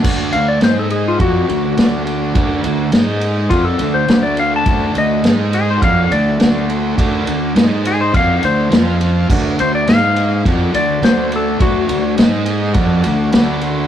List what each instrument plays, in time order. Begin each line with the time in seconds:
0.01 fingered electric bass D2, distorted electric guitar D3, transistor combo organ F#4 A4 D5, kick, crash
0.06 distorted electric guitar A3 D4
0.31 fingered electric bass D2, distorted electric guitar D3 A3, transistor combo organ F#4 A4 E5, electric slide guitar F5, ride
0.48 electric slide guitar D5
0.60 fingered electric bass G#2, distorted electric guitar G#3 D#4 G#4, transistor combo organ D#4 G#4 D#5, electric slide guitar C5, snare, ride
0.79 electric slide guitar A4
0.88 transistor combo organ D#4 G#4 D#5, electric slide guitar G#4, ride
1.08 electric slide guitar F4
1.17 fingered electric bass F2, distorted electric guitar F3 C4, transistor combo organ F#4 A4 D5, kick, ride
1.21 distorted electric guitar F4, electric slide guitar F#4
1.47 fingered electric bass D2, distorted electric guitar D3 A3, transistor combo organ F#4 A4 D5, ride
1.74 fingered electric bass D2, transistor combo organ F#4 A4 D5, ride
1.79 distorted electric guitar D3 A3 D4, snare
2.05 transistor combo organ F#4 A4 D5, ride
2.34 fingered electric bass D2, distorted electric guitar D3 A3 D4, transistor combo organ F#4 A4 D5, kick, ride
2.64 fingered electric bass D2, distorted electric guitar D3 A3, transistor combo organ F#4 A4 D5, ride
2.92 fingered electric bass G#2, distorted electric guitar G#3 D#4 G#4, transistor combo organ D#4 G#4, snare, ride
2.96 transistor combo organ D#5
3.21 transistor combo organ D#4 G#4 D#5, ride
3.49 fingered electric bass F2, distorted electric guitar F3 C4, electric slide guitar F4, transistor combo organ F#4 A4 D5, kick, ride
3.53 distorted electric guitar F4
3.65 electric slide guitar A4
3.77 fingered electric bass D2, transistor combo organ F#4 A4 D5, ride
3.82 distorted electric guitar D3 A3
3.94 electric slide guitar C5
4.08 fingered electric bass D2, distorted electric guitar D3 A3 D4, transistor combo organ F#4 A4 D5, snare, ride
4.23 electric slide guitar D5
4.36 transistor combo organ F#4 A4 D5, electric slide guitar F5, ride
4.56 electric slide guitar A5
4.66 fingered electric bass D2, distorted electric guitar D3 A3 D4, transistor combo organ F#4 A4 D5, kick, ride
4.93 fingered electric bass D2, transistor combo organ F#4 A4 D5, ride
4.97 distorted electric guitar D3 A3, electric slide guitar D#5
5.21 fingered electric bass G#2, transistor combo organ D#4 G#4 D#5, ride
5.25 distorted electric guitar G#3 D#4 G#4, snare
5.49 transistor combo organ D#4 G#4 D#5
5.53 electric slide guitar G#4, ride
5.71 electric slide guitar C5
5.77 transistor combo organ F#4 A4 D5
5.82 fingered electric bass F2, distorted electric guitar F3 C4 F4, electric slide guitar F5, kick, ride
6.07 fingered electric bass D2, transistor combo organ F#4 A4 E5
6.12 distorted electric guitar D3 A3, electric slide guitar D5, ride
6.37 distorted electric guitar D3, transistor combo organ F#4 A4 D5, ride
6.41 fingered electric bass D2, distorted electric guitar A3 D4, snare
6.67 transistor combo organ F#4 A4 C5, ride
6.97 fingered electric bass D2, distorted electric guitar D3 A3 D4, transistor combo organ F#4 A4 D5, kick, ride
7.26 fingered electric bass D2, distorted electric guitar D3 A3, transistor combo organ F#4 A4 D5, ride
7.54 fingered electric bass G#2, distorted electric guitar G#3 D#4 G#4, transistor combo organ D#4 G#4 D#5, snare, ride
7.85 transistor combo organ D#4 G#4 D#5, electric slide guitar G#4, ride
8.01 electric slide guitar C5
8.14 fingered electric bass F2, distorted electric guitar F3 C4 F4, transistor combo organ F#4 A4 D5, electric slide guitar F5, kick, ride
8.42 fingered electric bass D2, distorted electric guitar D3 A3, transistor combo organ F#4 A4 D5, electric slide guitar C5, ride
8.70 fingered electric bass F2, distorted electric guitar F3 C4 F4, transistor combo organ F4 C5 F5, snare, ride
9.00 transistor combo organ F4 C5 F5, ride
9.29 fingered electric bass D2, distorted electric guitar D3 A3 D4, transistor combo organ F#4 A4 D5, kick, crash
9.56 fingered electric bass D2, transistor combo organ F#4 A4 D5, electric slide guitar C5, ride
9.61 distorted electric guitar D3 A3
9.75 electric slide guitar D5
9.86 fingered electric bass G#2, distorted electric guitar G#3 D#4 G#4, transistor combo organ D#4 G#4 D#5, electric slide guitar F5, snare, ride
10.16 transistor combo organ D#4 G#4 D#5, ride
10.45 fingered electric bass F2, distorted electric guitar F3 C4 F4, transistor combo organ F#4 A4 D5, kick, ride
10.73 fingered electric bass D2, distorted electric guitar D3 A3, transistor combo organ F#4 A4 C5, electric slide guitar D5, ride
11.02 fingered electric bass D2, distorted electric guitar D3 A3 D4, transistor combo organ F#4 A4 D5, electric slide guitar C5, snare, ride
11.31 transistor combo organ F#4 A4 D5, ride
11.36 electric slide guitar A4
11.60 fingered electric bass D2, distorted electric guitar D3 A3 D4, transistor combo organ F#4 A4 D5, electric slide guitar F#4, kick, ride
11.88 fingered electric bass D2, distorted electric guitar D3 A3, transistor combo organ F#4 A4 D5, ride
12.16 fingered electric bass G#2, distorted electric guitar G#3 D#4 G#4, transistor combo organ D#4 G#4 D#5, snare, ride
12.44 transistor combo organ D#4 G#4 D#5, ride
12.73 fingered electric bass F2, distorted electric guitar F3 C4, transistor combo organ F#4 A4 D5, kick, ride
12.77 distorted electric guitar F4
13.02 distorted electric guitar D3 A3, transistor combo organ F#4 A4 D5, ride
13.06 fingered electric bass D2
13.32 fingered electric bass D2, distorted electric guitar D3 A3 D4, transistor combo organ F#4 A4 D5 B5, snare, ride
13.61 transistor combo organ F#4 A4 C5, ride